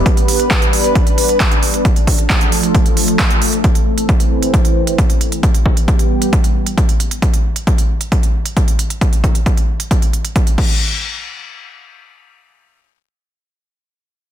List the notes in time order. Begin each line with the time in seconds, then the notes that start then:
Already playing: G3 B3
0.06 D4 B4, kick, closed hi-hat
0.17 closed hi-hat
0.28 open hi-hat
0.40 closed hi-hat
0.51 kick, clap, closed hi-hat
0.62 closed hi-hat
0.73 open hi-hat
0.84 closed hi-hat
0.95 kick, closed hi-hat
1.07 closed hi-hat
1.18 open hi-hat
1.29 closed hi-hat
1.40 kick, clap, closed hi-hat
1.51 closed hi-hat
1.63 open hi-hat
1.74 closed hi-hat
1.85 F3 A3 A4, kick, closed hi-hat
1.96 closed hi-hat
2.07 kick, open hi-hat
2.19 closed hi-hat
2.30 kick, clap, closed hi-hat
2.41 closed hi-hat
2.52 open hi-hat
2.63 closed hi-hat
2.75 kick, closed hi-hat
2.86 closed hi-hat
2.97 open hi-hat
3.08 closed hi-hat
3.19 kick, clap, closed hi-hat
3.30 closed hi-hat
3.42 open hi-hat
3.53 closed hi-hat
3.64 E3 C4, kick, closed hi-hat
3.75 closed hi-hat
3.98 closed hi-hat
4.09 kick, closed hi-hat
4.20 closed hi-hat
4.42 closed hi-hat
4.54 kick, closed hi-hat
4.65 closed hi-hat
4.87 closed hi-hat
4.98 kick, closed hi-hat
5.10 closed hi-hat
5.21 closed hi-hat
5.32 closed hi-hat
5.43 G3 B3 G4, kick, closed hi-hat
5.54 closed hi-hat
5.66 kick
5.77 closed hi-hat
5.88 kick, closed hi-hat
5.99 closed hi-hat
6.22 closed hi-hat
6.33 kick, closed hi-hat
6.44 closed hi-hat
6.66 closed hi-hat
6.78 kick, closed hi-hat
6.89 closed hi-hat
7.00 closed hi-hat
7.11 closed hi-hat
7.22 kick, closed hi-hat
7.34 closed hi-hat
7.56 closed hi-hat
7.67 kick, closed hi-hat
7.78 closed hi-hat
8.01 closed hi-hat
8.12 kick, closed hi-hat
8.23 closed hi-hat
8.46 closed hi-hat
8.57 kick, closed hi-hat
8.68 closed hi-hat
8.79 closed hi-hat
8.90 closed hi-hat
9.01 kick, closed hi-hat
9.13 closed hi-hat
9.24 kick, closed hi-hat
9.35 closed hi-hat
9.46 kick, closed hi-hat
9.57 closed hi-hat
9.80 closed hi-hat
9.91 kick, closed hi-hat
10.02 closed hi-hat
10.13 closed hi-hat
10.25 closed hi-hat
10.36 kick, closed hi-hat
10.47 closed hi-hat
10.58 kick, crash